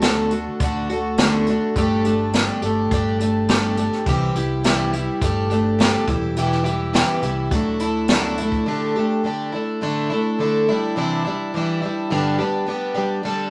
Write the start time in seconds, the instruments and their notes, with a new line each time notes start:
Already playing: fingered electric bass D2
0.01 twelve-string acoustic guitar D3 A3 D4 F#4, snare, closed hi-hat
0.31 twelve-string acoustic guitar A3 D4 F#4, closed hi-hat
0.60 fingered electric bass D2, twelve-string acoustic guitar D3 A3 D4, kick, closed hi-hat
0.64 twelve-string acoustic guitar F#4
0.90 twelve-string acoustic guitar A3 D4 F#4, closed hi-hat
1.17 twelve-string acoustic guitar D3 A3 D4 F#4, snare, closed hi-hat
1.46 twelve-string acoustic guitar D4 F#4, closed hi-hat
1.51 twelve-string acoustic guitar A3
1.76 fingered electric bass G1, twelve-string acoustic guitar G3 A3 D4 G4, kick, closed hi-hat
2.04 twelve-string acoustic guitar A3 D4 G4, closed hi-hat
2.33 twelve-string acoustic guitar G3 A3 D4 G4, snare, closed hi-hat
2.62 fingered electric bass G1, twelve-string acoustic guitar A3 D4 G4, closed hi-hat
2.91 fingered electric bass G1, twelve-string acoustic guitar G3 A3 D4 G4, kick, closed hi-hat
3.20 twelve-string acoustic guitar A3 D4 G4, closed hi-hat
3.48 twelve-string acoustic guitar G3 A3 D4 G4, snare, closed hi-hat
3.77 twelve-string acoustic guitar A3 D4 G4, closed hi-hat
3.93 snare
4.06 fingered electric bass C2, twelve-string acoustic guitar C3 E3 G3 E4 G4, kick, closed hi-hat
4.35 fingered electric bass C2, twelve-string acoustic guitar G3 E4 G4, closed hi-hat
4.64 twelve-string acoustic guitar C3 E3 G3 E4 G4, snare, closed hi-hat
4.93 twelve-string acoustic guitar G3 E4 G4, closed hi-hat
5.21 fingered electric bass G1, twelve-string acoustic guitar G3 A3 D4 G4, kick, closed hi-hat
5.50 twelve-string acoustic guitar A3 D4 G4, closed hi-hat
5.79 twelve-string acoustic guitar G3 A3 D4 G4, snare, closed hi-hat
6.07 fingered electric bass E1, twelve-string acoustic guitar E3 G3 E4 G4, kick, closed hi-hat
6.36 twelve-string acoustic guitar E2 B2 E3 G3 E4 G4, closed hi-hat
6.52 snare
6.64 twelve-string acoustic guitar E3 G3 E4 G4, closed hi-hat
6.93 twelve-string acoustic guitar E2 B2 E3 G3 E4 G4, snare, closed hi-hat
7.22 fingered electric bass C2, twelve-string acoustic guitar E3 G3 E4 G4, closed hi-hat
7.51 fingered electric bass D2, twelve-string acoustic guitar F#3 A3 D4 E4, kick, closed hi-hat
7.79 twelve-string acoustic guitar D4 E4, closed hi-hat
7.84 twelve-string acoustic guitar A3
8.08 twelve-string acoustic guitar D3 F#3 A3 D4, snare, closed hi-hat
8.12 twelve-string acoustic guitar E4
8.37 twelve-string acoustic guitar D4 E4, closed hi-hat
8.42 twelve-string acoustic guitar A3
8.52 kick
8.66 twelve-string acoustic guitar D3 A3 D4 G4
8.96 twelve-string acoustic guitar A3 D4 G4
9.24 twelve-string acoustic guitar D3 A3 D4 G4
9.52 twelve-string acoustic guitar A3 D4 E4
9.81 twelve-string acoustic guitar A2 D3 A3 D4 E4
10.10 twelve-string acoustic guitar A3 D4 E4
10.39 twelve-string acoustic guitar D3 A3 D4 E4
10.69 twelve-string acoustic guitar G3 D4 E4
10.96 twelve-string acoustic guitar C3 E3 G3 D4 E4
11.25 twelve-string acoustic guitar G3 D4 E4
11.54 twelve-string acoustic guitar E3 G3 D4 E4
11.82 twelve-string acoustic guitar G3 D4 E4
12.10 twelve-string acoustic guitar G2 D3 G3 B3 D4 G4
12.39 twelve-string acoustic guitar G3 B3 D4 G4
12.66 twelve-string acoustic guitar G3 B3 D4 G4
12.95 twelve-string acoustic guitar G3 B3 D4 G4
13.23 twelve-string acoustic guitar D3 G3 D4 A4